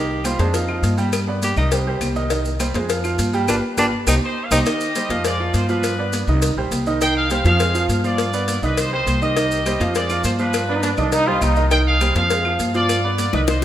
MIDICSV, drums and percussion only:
0, 0, Header, 1, 2, 480
1, 0, Start_track
1, 0, Key_signature, -3, "minor"
1, 0, Tempo, 293974
1, 1847, Time_signature, 4, 2, 24, 8
1, 22283, End_track
2, 0, Start_track
2, 0, Title_t, "Drums"
2, 168, Note_on_c, 9, 63, 37
2, 331, Note_off_c, 9, 63, 0
2, 395, Note_on_c, 9, 75, 55
2, 405, Note_on_c, 9, 70, 70
2, 406, Note_on_c, 9, 56, 74
2, 410, Note_on_c, 9, 63, 100
2, 558, Note_off_c, 9, 75, 0
2, 568, Note_off_c, 9, 70, 0
2, 570, Note_off_c, 9, 56, 0
2, 573, Note_off_c, 9, 63, 0
2, 643, Note_on_c, 9, 56, 77
2, 646, Note_on_c, 9, 63, 92
2, 648, Note_on_c, 9, 70, 28
2, 806, Note_off_c, 9, 56, 0
2, 809, Note_off_c, 9, 63, 0
2, 811, Note_off_c, 9, 70, 0
2, 881, Note_on_c, 9, 56, 105
2, 882, Note_on_c, 9, 70, 78
2, 883, Note_on_c, 9, 63, 34
2, 1045, Note_off_c, 9, 56, 0
2, 1045, Note_off_c, 9, 70, 0
2, 1047, Note_off_c, 9, 63, 0
2, 1120, Note_on_c, 9, 75, 74
2, 1129, Note_on_c, 9, 63, 32
2, 1283, Note_off_c, 9, 75, 0
2, 1293, Note_off_c, 9, 63, 0
2, 1362, Note_on_c, 9, 70, 66
2, 1365, Note_on_c, 9, 56, 77
2, 1371, Note_on_c, 9, 63, 87
2, 1525, Note_off_c, 9, 70, 0
2, 1528, Note_off_c, 9, 56, 0
2, 1535, Note_off_c, 9, 63, 0
2, 1598, Note_on_c, 9, 70, 34
2, 1611, Note_on_c, 9, 63, 98
2, 1761, Note_off_c, 9, 70, 0
2, 1774, Note_off_c, 9, 63, 0
2, 1840, Note_on_c, 9, 70, 70
2, 1843, Note_on_c, 9, 75, 70
2, 1844, Note_on_c, 9, 56, 113
2, 2003, Note_off_c, 9, 70, 0
2, 2006, Note_off_c, 9, 75, 0
2, 2007, Note_off_c, 9, 56, 0
2, 2324, Note_on_c, 9, 70, 72
2, 2331, Note_on_c, 9, 56, 69
2, 2331, Note_on_c, 9, 63, 89
2, 2487, Note_off_c, 9, 70, 0
2, 2494, Note_off_c, 9, 56, 0
2, 2495, Note_off_c, 9, 63, 0
2, 2559, Note_on_c, 9, 70, 31
2, 2572, Note_on_c, 9, 75, 74
2, 2575, Note_on_c, 9, 63, 35
2, 2575, Note_on_c, 9, 64, 89
2, 2722, Note_off_c, 9, 70, 0
2, 2735, Note_off_c, 9, 75, 0
2, 2738, Note_off_c, 9, 63, 0
2, 2738, Note_off_c, 9, 64, 0
2, 2802, Note_on_c, 9, 70, 79
2, 2804, Note_on_c, 9, 56, 113
2, 2809, Note_on_c, 9, 63, 34
2, 2965, Note_off_c, 9, 70, 0
2, 2967, Note_off_c, 9, 56, 0
2, 2972, Note_off_c, 9, 63, 0
2, 3046, Note_on_c, 9, 63, 34
2, 3209, Note_off_c, 9, 63, 0
2, 3280, Note_on_c, 9, 56, 72
2, 3282, Note_on_c, 9, 63, 87
2, 3286, Note_on_c, 9, 75, 74
2, 3287, Note_on_c, 9, 70, 75
2, 3444, Note_off_c, 9, 56, 0
2, 3445, Note_off_c, 9, 63, 0
2, 3450, Note_off_c, 9, 75, 0
2, 3451, Note_off_c, 9, 70, 0
2, 3525, Note_on_c, 9, 70, 28
2, 3688, Note_off_c, 9, 70, 0
2, 3760, Note_on_c, 9, 56, 117
2, 3760, Note_on_c, 9, 70, 69
2, 3923, Note_off_c, 9, 56, 0
2, 3923, Note_off_c, 9, 70, 0
2, 4002, Note_on_c, 9, 70, 56
2, 4006, Note_on_c, 9, 63, 36
2, 4166, Note_off_c, 9, 70, 0
2, 4169, Note_off_c, 9, 63, 0
2, 4241, Note_on_c, 9, 75, 64
2, 4243, Note_on_c, 9, 63, 95
2, 4243, Note_on_c, 9, 70, 71
2, 4246, Note_on_c, 9, 56, 74
2, 4404, Note_off_c, 9, 75, 0
2, 4406, Note_off_c, 9, 70, 0
2, 4407, Note_off_c, 9, 63, 0
2, 4409, Note_off_c, 9, 56, 0
2, 4482, Note_on_c, 9, 63, 107
2, 4486, Note_on_c, 9, 70, 30
2, 4494, Note_on_c, 9, 56, 73
2, 4645, Note_off_c, 9, 63, 0
2, 4649, Note_off_c, 9, 70, 0
2, 4657, Note_off_c, 9, 56, 0
2, 4724, Note_on_c, 9, 70, 84
2, 4727, Note_on_c, 9, 63, 34
2, 4730, Note_on_c, 9, 56, 115
2, 4888, Note_off_c, 9, 70, 0
2, 4891, Note_off_c, 9, 63, 0
2, 4893, Note_off_c, 9, 56, 0
2, 4965, Note_on_c, 9, 63, 31
2, 4965, Note_on_c, 9, 75, 69
2, 4969, Note_on_c, 9, 70, 60
2, 5128, Note_off_c, 9, 63, 0
2, 5128, Note_off_c, 9, 75, 0
2, 5132, Note_off_c, 9, 70, 0
2, 5201, Note_on_c, 9, 63, 97
2, 5204, Note_on_c, 9, 70, 72
2, 5208, Note_on_c, 9, 56, 80
2, 5365, Note_off_c, 9, 63, 0
2, 5367, Note_off_c, 9, 70, 0
2, 5371, Note_off_c, 9, 56, 0
2, 5444, Note_on_c, 9, 63, 87
2, 5445, Note_on_c, 9, 70, 28
2, 5607, Note_off_c, 9, 63, 0
2, 5608, Note_off_c, 9, 70, 0
2, 5678, Note_on_c, 9, 63, 109
2, 5683, Note_on_c, 9, 70, 93
2, 5688, Note_on_c, 9, 75, 98
2, 5694, Note_on_c, 9, 56, 112
2, 5842, Note_off_c, 9, 63, 0
2, 5847, Note_off_c, 9, 70, 0
2, 5851, Note_off_c, 9, 75, 0
2, 5857, Note_off_c, 9, 56, 0
2, 6166, Note_on_c, 9, 70, 100
2, 6169, Note_on_c, 9, 63, 100
2, 6170, Note_on_c, 9, 56, 101
2, 6171, Note_on_c, 9, 75, 81
2, 6330, Note_off_c, 9, 70, 0
2, 6332, Note_off_c, 9, 63, 0
2, 6333, Note_off_c, 9, 56, 0
2, 6335, Note_off_c, 9, 75, 0
2, 6645, Note_on_c, 9, 70, 108
2, 6649, Note_on_c, 9, 56, 109
2, 6658, Note_on_c, 9, 75, 101
2, 6659, Note_on_c, 9, 63, 102
2, 6809, Note_off_c, 9, 70, 0
2, 6812, Note_off_c, 9, 56, 0
2, 6822, Note_off_c, 9, 63, 0
2, 6822, Note_off_c, 9, 75, 0
2, 7368, Note_on_c, 9, 70, 109
2, 7373, Note_on_c, 9, 56, 92
2, 7374, Note_on_c, 9, 63, 111
2, 7375, Note_on_c, 9, 75, 89
2, 7531, Note_off_c, 9, 70, 0
2, 7536, Note_off_c, 9, 56, 0
2, 7537, Note_off_c, 9, 63, 0
2, 7538, Note_off_c, 9, 75, 0
2, 7607, Note_on_c, 9, 70, 79
2, 7620, Note_on_c, 9, 56, 111
2, 7620, Note_on_c, 9, 63, 39
2, 7770, Note_off_c, 9, 70, 0
2, 7783, Note_off_c, 9, 56, 0
2, 7783, Note_off_c, 9, 63, 0
2, 7845, Note_on_c, 9, 70, 62
2, 7854, Note_on_c, 9, 63, 37
2, 8008, Note_off_c, 9, 70, 0
2, 8018, Note_off_c, 9, 63, 0
2, 8088, Note_on_c, 9, 70, 77
2, 8089, Note_on_c, 9, 63, 89
2, 8092, Note_on_c, 9, 56, 76
2, 8252, Note_off_c, 9, 63, 0
2, 8252, Note_off_c, 9, 70, 0
2, 8255, Note_off_c, 9, 56, 0
2, 8329, Note_on_c, 9, 70, 28
2, 8332, Note_on_c, 9, 56, 81
2, 8334, Note_on_c, 9, 63, 98
2, 8492, Note_off_c, 9, 70, 0
2, 8496, Note_off_c, 9, 56, 0
2, 8497, Note_off_c, 9, 63, 0
2, 8564, Note_on_c, 9, 70, 80
2, 8565, Note_on_c, 9, 56, 116
2, 8575, Note_on_c, 9, 63, 36
2, 8727, Note_off_c, 9, 70, 0
2, 8729, Note_off_c, 9, 56, 0
2, 8739, Note_off_c, 9, 63, 0
2, 8814, Note_on_c, 9, 63, 36
2, 8977, Note_off_c, 9, 63, 0
2, 9043, Note_on_c, 9, 63, 86
2, 9044, Note_on_c, 9, 70, 73
2, 9047, Note_on_c, 9, 56, 74
2, 9207, Note_off_c, 9, 63, 0
2, 9207, Note_off_c, 9, 70, 0
2, 9210, Note_off_c, 9, 56, 0
2, 9286, Note_on_c, 9, 63, 85
2, 9288, Note_on_c, 9, 70, 29
2, 9449, Note_off_c, 9, 63, 0
2, 9452, Note_off_c, 9, 70, 0
2, 9525, Note_on_c, 9, 70, 70
2, 9529, Note_on_c, 9, 63, 38
2, 9533, Note_on_c, 9, 56, 112
2, 9688, Note_off_c, 9, 70, 0
2, 9693, Note_off_c, 9, 63, 0
2, 9697, Note_off_c, 9, 56, 0
2, 9778, Note_on_c, 9, 63, 36
2, 9941, Note_off_c, 9, 63, 0
2, 10004, Note_on_c, 9, 70, 68
2, 10011, Note_on_c, 9, 63, 94
2, 10017, Note_on_c, 9, 56, 75
2, 10167, Note_off_c, 9, 70, 0
2, 10174, Note_off_c, 9, 63, 0
2, 10180, Note_off_c, 9, 56, 0
2, 10248, Note_on_c, 9, 70, 27
2, 10258, Note_on_c, 9, 63, 37
2, 10258, Note_on_c, 9, 64, 87
2, 10412, Note_off_c, 9, 70, 0
2, 10421, Note_off_c, 9, 63, 0
2, 10421, Note_off_c, 9, 64, 0
2, 10482, Note_on_c, 9, 70, 85
2, 10487, Note_on_c, 9, 56, 118
2, 10496, Note_on_c, 9, 63, 33
2, 10645, Note_off_c, 9, 70, 0
2, 10650, Note_off_c, 9, 56, 0
2, 10659, Note_off_c, 9, 63, 0
2, 10737, Note_on_c, 9, 63, 38
2, 10901, Note_off_c, 9, 63, 0
2, 10967, Note_on_c, 9, 70, 77
2, 10969, Note_on_c, 9, 56, 74
2, 10973, Note_on_c, 9, 63, 92
2, 11130, Note_off_c, 9, 70, 0
2, 11132, Note_off_c, 9, 56, 0
2, 11136, Note_off_c, 9, 63, 0
2, 11207, Note_on_c, 9, 70, 29
2, 11370, Note_off_c, 9, 70, 0
2, 11449, Note_on_c, 9, 70, 74
2, 11453, Note_on_c, 9, 63, 39
2, 11458, Note_on_c, 9, 56, 118
2, 11612, Note_off_c, 9, 70, 0
2, 11616, Note_off_c, 9, 63, 0
2, 11621, Note_off_c, 9, 56, 0
2, 11920, Note_on_c, 9, 70, 72
2, 11937, Note_on_c, 9, 56, 77
2, 11937, Note_on_c, 9, 63, 99
2, 12084, Note_off_c, 9, 70, 0
2, 12100, Note_off_c, 9, 56, 0
2, 12100, Note_off_c, 9, 63, 0
2, 12163, Note_on_c, 9, 70, 29
2, 12175, Note_on_c, 9, 56, 75
2, 12177, Note_on_c, 9, 63, 101
2, 12326, Note_off_c, 9, 70, 0
2, 12338, Note_off_c, 9, 56, 0
2, 12341, Note_off_c, 9, 63, 0
2, 12403, Note_on_c, 9, 70, 77
2, 12411, Note_on_c, 9, 56, 122
2, 12421, Note_on_c, 9, 63, 34
2, 12567, Note_off_c, 9, 70, 0
2, 12574, Note_off_c, 9, 56, 0
2, 12585, Note_off_c, 9, 63, 0
2, 12652, Note_on_c, 9, 70, 65
2, 12658, Note_on_c, 9, 63, 35
2, 12815, Note_off_c, 9, 70, 0
2, 12822, Note_off_c, 9, 63, 0
2, 12890, Note_on_c, 9, 63, 84
2, 12890, Note_on_c, 9, 70, 71
2, 12893, Note_on_c, 9, 56, 72
2, 13054, Note_off_c, 9, 63, 0
2, 13054, Note_off_c, 9, 70, 0
2, 13057, Note_off_c, 9, 56, 0
2, 13130, Note_on_c, 9, 63, 95
2, 13131, Note_on_c, 9, 70, 33
2, 13293, Note_off_c, 9, 63, 0
2, 13295, Note_off_c, 9, 70, 0
2, 13362, Note_on_c, 9, 56, 111
2, 13372, Note_on_c, 9, 63, 36
2, 13373, Note_on_c, 9, 70, 67
2, 13525, Note_off_c, 9, 56, 0
2, 13535, Note_off_c, 9, 63, 0
2, 13536, Note_off_c, 9, 70, 0
2, 13607, Note_on_c, 9, 70, 63
2, 13770, Note_off_c, 9, 70, 0
2, 13844, Note_on_c, 9, 56, 82
2, 13852, Note_on_c, 9, 70, 74
2, 13855, Note_on_c, 9, 63, 95
2, 14007, Note_off_c, 9, 56, 0
2, 14015, Note_off_c, 9, 70, 0
2, 14018, Note_off_c, 9, 63, 0
2, 14088, Note_on_c, 9, 70, 29
2, 14097, Note_on_c, 9, 63, 39
2, 14097, Note_on_c, 9, 64, 85
2, 14252, Note_off_c, 9, 70, 0
2, 14261, Note_off_c, 9, 63, 0
2, 14261, Note_off_c, 9, 64, 0
2, 14327, Note_on_c, 9, 56, 118
2, 14328, Note_on_c, 9, 70, 78
2, 14335, Note_on_c, 9, 63, 36
2, 14491, Note_off_c, 9, 56, 0
2, 14491, Note_off_c, 9, 70, 0
2, 14498, Note_off_c, 9, 63, 0
2, 14580, Note_on_c, 9, 63, 36
2, 14743, Note_off_c, 9, 63, 0
2, 14811, Note_on_c, 9, 70, 72
2, 14818, Note_on_c, 9, 56, 78
2, 14822, Note_on_c, 9, 63, 90
2, 14974, Note_off_c, 9, 70, 0
2, 14981, Note_off_c, 9, 56, 0
2, 14985, Note_off_c, 9, 63, 0
2, 15054, Note_on_c, 9, 70, 33
2, 15217, Note_off_c, 9, 70, 0
2, 15292, Note_on_c, 9, 56, 121
2, 15296, Note_on_c, 9, 70, 75
2, 15455, Note_off_c, 9, 56, 0
2, 15460, Note_off_c, 9, 70, 0
2, 15532, Note_on_c, 9, 70, 62
2, 15696, Note_off_c, 9, 70, 0
2, 15770, Note_on_c, 9, 75, 63
2, 15773, Note_on_c, 9, 70, 70
2, 15776, Note_on_c, 9, 63, 90
2, 15778, Note_on_c, 9, 56, 70
2, 15933, Note_off_c, 9, 75, 0
2, 15937, Note_off_c, 9, 70, 0
2, 15940, Note_off_c, 9, 63, 0
2, 15941, Note_off_c, 9, 56, 0
2, 16011, Note_on_c, 9, 63, 103
2, 16011, Note_on_c, 9, 70, 27
2, 16020, Note_on_c, 9, 56, 76
2, 16174, Note_off_c, 9, 63, 0
2, 16175, Note_off_c, 9, 70, 0
2, 16183, Note_off_c, 9, 56, 0
2, 16242, Note_on_c, 9, 70, 73
2, 16252, Note_on_c, 9, 63, 35
2, 16258, Note_on_c, 9, 56, 116
2, 16405, Note_off_c, 9, 70, 0
2, 16415, Note_off_c, 9, 63, 0
2, 16421, Note_off_c, 9, 56, 0
2, 16482, Note_on_c, 9, 70, 59
2, 16489, Note_on_c, 9, 63, 35
2, 16489, Note_on_c, 9, 75, 73
2, 16646, Note_off_c, 9, 70, 0
2, 16652, Note_off_c, 9, 63, 0
2, 16652, Note_off_c, 9, 75, 0
2, 16717, Note_on_c, 9, 70, 77
2, 16729, Note_on_c, 9, 63, 92
2, 16740, Note_on_c, 9, 56, 81
2, 16881, Note_off_c, 9, 70, 0
2, 16892, Note_off_c, 9, 63, 0
2, 16903, Note_off_c, 9, 56, 0
2, 16960, Note_on_c, 9, 70, 30
2, 16970, Note_on_c, 9, 63, 95
2, 17123, Note_off_c, 9, 70, 0
2, 17133, Note_off_c, 9, 63, 0
2, 17200, Note_on_c, 9, 70, 77
2, 17209, Note_on_c, 9, 75, 66
2, 17210, Note_on_c, 9, 56, 111
2, 17210, Note_on_c, 9, 63, 42
2, 17363, Note_off_c, 9, 70, 0
2, 17372, Note_off_c, 9, 75, 0
2, 17373, Note_off_c, 9, 56, 0
2, 17373, Note_off_c, 9, 63, 0
2, 17448, Note_on_c, 9, 63, 36
2, 17611, Note_off_c, 9, 63, 0
2, 17681, Note_on_c, 9, 70, 73
2, 17684, Note_on_c, 9, 56, 83
2, 17686, Note_on_c, 9, 63, 93
2, 17844, Note_off_c, 9, 70, 0
2, 17847, Note_off_c, 9, 56, 0
2, 17849, Note_off_c, 9, 63, 0
2, 17920, Note_on_c, 9, 70, 33
2, 17926, Note_on_c, 9, 75, 62
2, 17927, Note_on_c, 9, 63, 36
2, 17927, Note_on_c, 9, 64, 88
2, 18083, Note_off_c, 9, 70, 0
2, 18090, Note_off_c, 9, 63, 0
2, 18090, Note_off_c, 9, 64, 0
2, 18090, Note_off_c, 9, 75, 0
2, 18158, Note_on_c, 9, 70, 79
2, 18164, Note_on_c, 9, 56, 117
2, 18168, Note_on_c, 9, 63, 34
2, 18168, Note_on_c, 9, 64, 70
2, 18321, Note_off_c, 9, 70, 0
2, 18327, Note_off_c, 9, 56, 0
2, 18332, Note_off_c, 9, 63, 0
2, 18332, Note_off_c, 9, 64, 0
2, 18400, Note_on_c, 9, 63, 34
2, 18564, Note_off_c, 9, 63, 0
2, 18640, Note_on_c, 9, 70, 72
2, 18644, Note_on_c, 9, 63, 91
2, 18644, Note_on_c, 9, 75, 70
2, 18647, Note_on_c, 9, 56, 67
2, 18803, Note_off_c, 9, 70, 0
2, 18808, Note_off_c, 9, 63, 0
2, 18808, Note_off_c, 9, 75, 0
2, 18810, Note_off_c, 9, 56, 0
2, 18878, Note_on_c, 9, 70, 30
2, 19042, Note_off_c, 9, 70, 0
2, 19120, Note_on_c, 9, 70, 73
2, 19126, Note_on_c, 9, 56, 114
2, 19131, Note_on_c, 9, 63, 40
2, 19283, Note_off_c, 9, 70, 0
2, 19289, Note_off_c, 9, 56, 0
2, 19295, Note_off_c, 9, 63, 0
2, 19373, Note_on_c, 9, 63, 35
2, 19536, Note_off_c, 9, 63, 0
2, 19607, Note_on_c, 9, 70, 70
2, 19608, Note_on_c, 9, 75, 63
2, 19610, Note_on_c, 9, 56, 79
2, 19611, Note_on_c, 9, 63, 94
2, 19770, Note_off_c, 9, 70, 0
2, 19772, Note_off_c, 9, 75, 0
2, 19774, Note_off_c, 9, 56, 0
2, 19774, Note_off_c, 9, 63, 0
2, 19843, Note_on_c, 9, 70, 31
2, 19850, Note_on_c, 9, 56, 75
2, 19857, Note_on_c, 9, 63, 99
2, 20007, Note_off_c, 9, 70, 0
2, 20013, Note_off_c, 9, 56, 0
2, 20020, Note_off_c, 9, 63, 0
2, 20085, Note_on_c, 9, 70, 73
2, 20090, Note_on_c, 9, 56, 123
2, 20249, Note_off_c, 9, 70, 0
2, 20253, Note_off_c, 9, 56, 0
2, 20329, Note_on_c, 9, 75, 76
2, 20343, Note_on_c, 9, 63, 34
2, 20493, Note_off_c, 9, 75, 0
2, 20506, Note_off_c, 9, 63, 0
2, 20564, Note_on_c, 9, 70, 75
2, 20569, Note_on_c, 9, 56, 71
2, 20580, Note_on_c, 9, 63, 89
2, 20727, Note_off_c, 9, 70, 0
2, 20732, Note_off_c, 9, 56, 0
2, 20744, Note_off_c, 9, 63, 0
2, 20808, Note_on_c, 9, 70, 31
2, 20823, Note_on_c, 9, 63, 91
2, 20971, Note_off_c, 9, 70, 0
2, 20987, Note_off_c, 9, 63, 0
2, 21050, Note_on_c, 9, 75, 65
2, 21051, Note_on_c, 9, 70, 77
2, 21052, Note_on_c, 9, 56, 102
2, 21067, Note_on_c, 9, 63, 38
2, 21214, Note_off_c, 9, 70, 0
2, 21214, Note_off_c, 9, 75, 0
2, 21215, Note_off_c, 9, 56, 0
2, 21230, Note_off_c, 9, 63, 0
2, 21307, Note_on_c, 9, 63, 35
2, 21470, Note_off_c, 9, 63, 0
2, 21526, Note_on_c, 9, 56, 79
2, 21529, Note_on_c, 9, 70, 70
2, 21536, Note_on_c, 9, 63, 98
2, 21689, Note_off_c, 9, 56, 0
2, 21692, Note_off_c, 9, 70, 0
2, 21699, Note_off_c, 9, 63, 0
2, 21766, Note_on_c, 9, 70, 30
2, 21767, Note_on_c, 9, 60, 85
2, 21767, Note_on_c, 9, 75, 67
2, 21785, Note_on_c, 9, 63, 37
2, 21785, Note_on_c, 9, 64, 89
2, 21929, Note_off_c, 9, 70, 0
2, 21930, Note_off_c, 9, 60, 0
2, 21931, Note_off_c, 9, 75, 0
2, 21948, Note_off_c, 9, 63, 0
2, 21948, Note_off_c, 9, 64, 0
2, 22002, Note_on_c, 9, 70, 80
2, 22007, Note_on_c, 9, 56, 119
2, 22007, Note_on_c, 9, 60, 87
2, 22015, Note_on_c, 9, 63, 38
2, 22166, Note_off_c, 9, 70, 0
2, 22171, Note_off_c, 9, 56, 0
2, 22171, Note_off_c, 9, 60, 0
2, 22178, Note_off_c, 9, 63, 0
2, 22283, End_track
0, 0, End_of_file